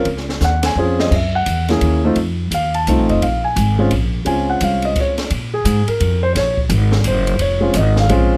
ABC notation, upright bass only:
X:1
M:3/4
L:1/8
Q:"Swing" 1/4=172
K:Bbm
V:1 name="Upright bass" clef=bass
D,,2 E,,2 F,,2 | G,,2 _F,,2 E,,2 | F,,2 E,,2 (3C,, =A,,, F,,, | B,,,2 A,,,2 B,,,2 |
D,,2 C,,2 z2 | B,,2 A,, z F,,2 | B,,,2 A,,,2 G,,,2 | F,,,2 A,,,2 B,,,2 |]